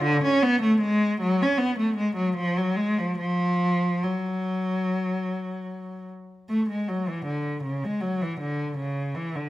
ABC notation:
X:1
M:4/4
L:1/16
Q:1/4=77
K:F#m
V:1 name="Cello" clef=bass
D, C B, A, G,2 F, C B, A, G, F, ^E, F, G, E, | ^E,4 F,8- F,2 z2 | A, G, F, E, D,2 C, G, F, E, D,2 C,2 E, D, |]